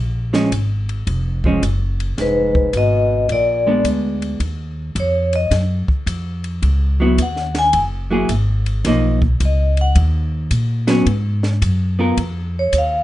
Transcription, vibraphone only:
2.21 B4
2.77 D#5
3.32 D5
5.00 C#5
5.36 D#5
7.22 F#5
7.59 G#5
9.45 D#5
9.81 F#5
12.59 C#5
12.78 F5

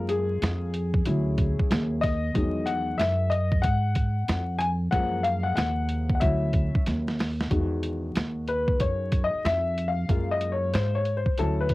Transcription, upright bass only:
Already playing: F#2
0.42 F2
1.07 D2
1.60 muted upright bass stroke
1.70 D#2
2.35 E2
2.99 F#2
3.64 G#2
4.28 F2
4.93 F#2
5.57 D#2
6.22 D2
6.75 muted upright bass stroke
6.87 D#2
7.51 E2
8.16 D#2
8.81 F#2
9.34 muted upright bass stroke
9.45 F2
10.09 F#2
10.74 G#2
11.26 muted upright bass stroke
11.39 D2

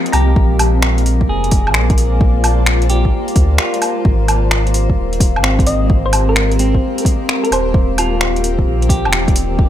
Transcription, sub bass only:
0.13 C2
0.36 A#1
1.29 F1
1.68 A#1
3.36 D2
4.05 G#1
4.98 D#1
5.36 G#1
7.51 D#1
7.74 D#1
8.66 A#1
9.05 D#1

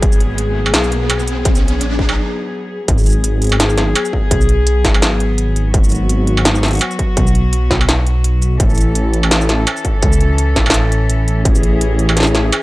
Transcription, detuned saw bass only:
0.02 G#1
0.74 B1
1.81 A1
2.88 G#1
4.31 B1
4.85 G#1
5.74 G#1
7.17 B1
7.71 B1
8.60 A1
10.03 C#2
10.56 A1
11.45 A1

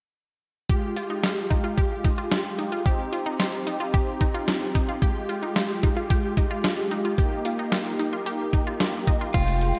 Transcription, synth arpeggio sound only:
0.69 G4
0.96 F4
1.10 D#4
1.23 F4
1.50 D#4
1.64 F4
1.77 G4
2.05 D#4
2.18 F4
2.31 F4
2.59 D#4
2.72 F4
2.86 G4
3.13 F4
3.26 D#4
3.40 F4
3.67 D#4
3.80 F4
3.94 G4
4.21 D#4
4.34 F4
4.48 F4
4.75 D#4
4.89 F4
5.02 G4
5.29 F4
5.43 D#4
5.56 F4
5.83 D#4
5.97 F4
6.10 G4
6.37 D#4
6.51 F4
6.64 F4
6.91 D#4
7.05 F4
7.18 G4
7.45 F4
7.59 D#4
7.72 F4
7.99 D#4
8.13 F4
8.26 G4
8.53 D#4
8.67 F4
8.80 F4
9.07 D#4
9.21 F4

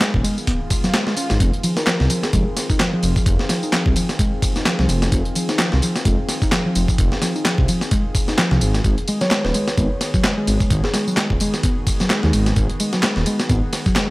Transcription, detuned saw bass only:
0.14 D#1
1.31 G#1
1.40 F1
2.00 C2
2.33 F1
3.03 F1
3.26 F1
3.86 C2
4.79 C2
4.89 F1
5.12 F1
5.73 C2
6.05 F1
6.76 F1
6.99 F1
7.58 C2
8.51 C2
8.62 G#1
8.85 G#1
9.45 D#1
9.78 G#1
10.47 G#1
10.71 G#1
11.30 D#1
12.24 D#2
12.34 G#1
12.57 G#1
13.16 D#1
13.49 G#1

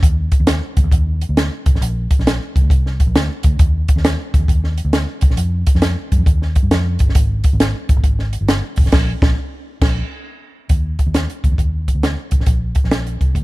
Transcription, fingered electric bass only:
0.03 D#2
0.40 D#2
0.77 D2
0.84 D#2
0.92 D#2
1.29 D2
1.66 C2
1.74 A1
1.81 A#1
2.19 A#1
2.56 C2
2.62 D2
2.70 C2
3.07 A#1
3.15 D2
3.44 D2
3.60 D#2
3.96 D#2
4.34 D2
4.40 D#2
4.48 D#2
4.85 D2
5.22 C2
5.29 A#1
5.37 F2
5.75 F2
6.12 G2
6.18 F2
6.27 D#2
6.63 G2
6.71 F2
7.00 G1
7.15 G#1
7.53 G#1
7.89 G1
7.96 G#1
8.04 G#1
8.41 G1
8.77 F1
8.85 A1
8.92 A#1
9.22 A#1
9.82 A#1
10.70 D#2
11.07 D#2
11.44 D2
11.52 D#2
11.58 D#2
11.95 D2
12.32 C2
12.39 A1
12.47 A#1
12.84 A#1
13.21 C2
13.35 D2

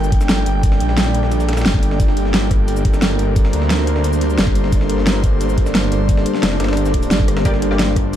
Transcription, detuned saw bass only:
Already playing: G1
0.12 G1
0.46 G1
0.80 A#1
1.66 G1
2.00 G1
2.85 G1
3.19 G1
3.53 D2
4.38 G1
4.72 G1
5.58 G1
5.92 G1
6.43 F1
6.60 G1
7.11 G1
7.45 G1

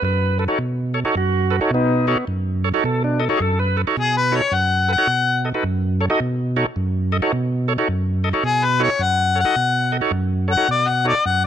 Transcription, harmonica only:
4.00 G#4
4.17 B4
4.36 C#5
4.54 F#5
4.92 F#5
8.46 G#4
8.65 B4
8.83 C#5
9.02 F#5
9.40 F#5
10.52 F#5
10.71 D5
10.89 F#5
11.08 D5
11.26 F#5

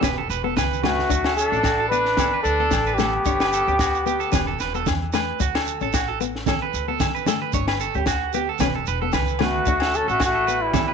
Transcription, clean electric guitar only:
0.04 B4
0.18 A4
0.30 B4
0.44 A4
0.57 B4
0.83 B4
1.10 F#4
1.26 A4
1.53 A4
1.65 F#4
1.80 A4
1.92 B4
2.19 A4
2.34 B4
2.60 A4
2.87 B4
3.00 A4
3.26 C#5
3.41 B4
3.54 A4
3.68 G4
3.80 F#4
4.07 G4
4.20 A4
4.32 B4
4.47 A4
4.61 B4
4.75 A4
5.14 B4
5.41 F#4
5.55 A4
5.83 A4
5.95 F#4
6.08 A4
6.21 muted clean electric guitar stroke
6.48 A4
6.62 B4
6.88 A4
7.15 B4
7.28 A4
7.42 B4
7.54 C#5
7.68 B4
7.81 A4
7.95 G4
8.07 F#4
8.35 G4
8.49 A4
8.61 B4
8.75 A4
8.88 B4
9.02 A4
9.14 B4
9.41 B4
9.67 F#4
9.82 A4
10.08 A4
10.21 F#4
10.35 A4
10.47 B4
10.74 A4
10.88 B4

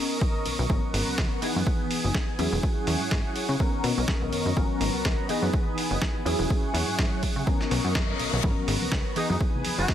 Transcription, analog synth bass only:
0.46 B1
0.59 B1
0.70 G#1
0.94 G#1
1.08 C#2
1.18 C#2
1.56 F#2
2.04 F#1
2.39 E2
2.52 E1
2.87 E2
3.01 G#2
3.12 G#2
3.49 C#3
3.84 B2
3.98 B1
4.22 B1
4.32 F#2
4.46 F#2
4.57 G#1
4.81 G#1
4.94 C#2
5.05 C#2
5.42 F#2
5.91 F#1
6.25 E2
6.39 E1
6.74 E2
6.88 G#2
6.98 G#2
7.36 C#3
7.71 B1
7.85 F#2
8.19 B1
8.33 B1
8.44 G#1
8.68 G#1
8.81 C#2
8.92 C#2
9.30 F#2
9.78 F#1

